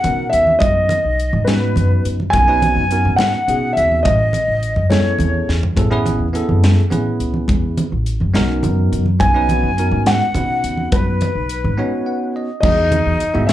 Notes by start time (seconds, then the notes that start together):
Already playing: F#5
0.03 B2 B3 C#4 D#4 F#4 A#4, closed hi-hat, low conga
0.30 D#2 E5, closed hi-hat, low conga
0.47 low conga
0.59 F#2 D#5, kick, closed hi-hat, high conga
0.89 closed hi-hat, low conga
1.05 B1
1.20 closed hi-hat
1.33 G#2, low conga
1.45 B3 C#4 D#4 B4, snare, closed hi-hat, high conga
1.49 F#4 B4
1.76 F#2, closed hi-hat, low conga
2.05 F#2, closed hi-hat, low conga
2.20 low conga
2.30 B1 B3 G#5, kick, closed hi-hat, high conga
2.34 C#4 D#4 F#4 A#4
2.47 B3 C#4 D#4 F#4 B4
2.62 closed hi-hat, low conga
2.76 F#2
2.91 B3 C#4 D#4 F#4 A#4, closed hi-hat
3.05 G#2, low conga
3.16 F#5, snare, closed hi-hat, high conga
3.34 low conga
3.48 B2 B3 C#4 D#4 F#4 G#4, closed hi-hat
3.73 D#2 E5, low conga
3.77 closed hi-hat
3.92 low conga
4.03 A1 D#5, kick, closed hi-hat, high conga
4.20 low conga
4.33 closed hi-hat, low conga
4.48 A1
4.63 closed hi-hat
4.76 F#2, low conga
4.90 B3 C#4 E4 G#4 A4 C#5, snare, closed hi-hat, high conga
5.18 E2, closed hi-hat, low conga
5.34 low conga
5.49 E2, snare
5.63 floor tom, low conga
5.76 A1 B3 C#4 E4 G#4 A4, kick, closed hi-hat, high conga
5.90 B3 C#4 E4 G#4 B4
6.06 closed hi-hat, low conga
6.19 E2
6.33 B3 C#4 E4 G#4 A4, closed hi-hat
6.49 F#2, low conga
6.64 snare, closed hi-hat, high conga
6.78 low conga
6.90 A2 B3 C#4 E4 G#4 B4, closed hi-hat, low conga
7.20 C#2, closed hi-hat, low conga
7.34 low conga
7.48 E2, kick, closed hi-hat, high conga
7.77 closed hi-hat, low conga
7.92 A1
8.06 closed hi-hat
8.20 F#2, low conga
8.34 B1 B3 C#4 D#4 F#4 A#4, snare, closed hi-hat, high conga
8.63 F#2, closed hi-hat, low conga
8.92 F#2, closed hi-hat, low conga
9.06 low conga
9.19 B1 B3 C#4 D#4 F#4 B4 G#5, kick, closed hi-hat, high conga
9.34 B3 C#4 D#4 F#4 B4
9.49 closed hi-hat, low conga
9.63 F#2
9.77 B3 C#4 D#4 F#4 A#4, closed hi-hat
9.91 G#2, low conga
10.06 F#5, snare, closed hi-hat, high conga
10.21 low conga
10.34 B2 B3 C#4 D#4 F#4 B4, closed hi-hat, low conga
10.64 D#2, closed hi-hat, low conga
10.77 low conga
10.92 F#2 B4, kick, closed hi-hat, high conga
11.21 closed hi-hat, low conga
11.35 B1
11.49 closed hi-hat
11.64 G#2, low conga
11.78 B3 C#4 D#4 F#4 C#5
12.06 F#5
12.36 D#5
12.61 E2 E3 B3 D#4 F#4 G#4 D#5, kick, crash, high conga
12.65 D#5
12.92 closed hi-hat, low conga
13.06 E2
13.20 muted upright bass stroke, closed hi-hat
13.34 G#2 B3 E4 F#4 G#4 E5, low conga
13.47 E4 E5, snare, closed hi-hat, high conga